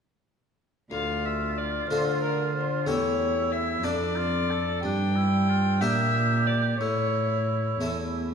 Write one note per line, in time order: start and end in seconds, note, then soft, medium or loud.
0.91 1.86 D2 soft
0.91 2.89 F4 soft
0.91 1.27 F5 medium
1.25 1.59 E5 medium
1.58 1.90 D5 medium
1.90 2.83 D3 soft
1.90 2.89 D3 soft
1.90 2.60 A3 soft
1.90 2.60 F4 soft
1.90 2.60 A4 soft
1.90 2.22 C5 medium
2.23 2.54 A#4 medium
2.55 2.86 C5 medium
2.87 3.79 E2 soft
2.87 3.83 E2 soft
2.87 3.79 A3 soft
2.87 3.85 E4 soft
2.87 3.80 G4 soft
2.87 3.80 A4 soft
2.87 3.54 C#5 medium
3.52 3.86 E5 medium
3.84 4.79 F2 soft
3.84 4.85 F2 soft
3.84 4.79 D4 soft
3.84 4.18 D4 soft
3.84 4.80 A4 soft
3.84 4.83 D5 medium
4.16 4.52 F4 medium
4.50 4.83 A4 medium
4.83 5.77 G2 soft
4.83 5.84 G2 medium
4.83 5.17 D4 medium
4.83 5.83 G5 medium
5.15 5.48 E4 medium
5.49 5.83 F4 medium
5.81 6.77 A#2 soft
5.81 6.81 A#2 medium
5.81 6.53 D4 soft
5.81 6.80 G4 medium
5.81 6.53 G4 soft
5.81 6.53 A#4 soft
5.81 6.48 E5 medium
6.47 6.79 D5 medium
6.80 7.77 A2 soft
6.80 7.79 A2 soft
6.80 8.28 E4 medium
6.80 7.78 C#5 medium
7.81 8.34 E2 soft
7.81 8.34 A3 soft
7.81 8.34 E4 soft
7.81 8.34 A4 soft